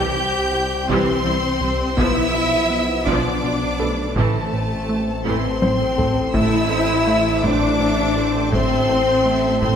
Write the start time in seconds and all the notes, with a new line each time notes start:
Already playing: C2 E3 G3 C4 G4 G5 G6
0.16 C2
0.52 C3
0.88 C2 C3 E3 G3 C4 G4 C5 C6, taiko
1.24 C2 E3 C4 E4
1.61 C2 G3 C4
1.97 B1 B2 F3 B3 E4 E5 E6, taiko
2.34 B2
2.70 B3
3.07 B1 B2 F3 B3 D4 D5 D6, taiko
3.43 B1 B2 D4 F4
3.79 B1 B2 A3 B3 D4 A4 B4
4.16 A1 A2 E3 A3 C4 A4 A5, taiko
4.53 A2
4.89 A3
5.25 A1 A2 E3 A3 C4 C6, taiko low-mid
5.62 A1 A2 C4 E4 C5, taiko high
5.98 A1 A2 A3 C4 A4, taiko low
6.34 A1 A2 A3 E4 A4 C5 E5 E6, taiko
6.70 A2 C4 A4 C5
7.07 A3 A4 C5 E5
7.43 A1 A2 A3 C4 D4 A4 C5 D6, taiko
7.80 A2 A3 C4 A4 C5 E5
8.16 A2 C4 A4 C5
8.52 A1 A2 A3 C4 A4 C5 E5 C6, taiko
8.89 A2 C4 A4 C5
9.25 A3 A4 C5 E5
9.61 A1 A2 A3 C4 A4 C5 C6, taiko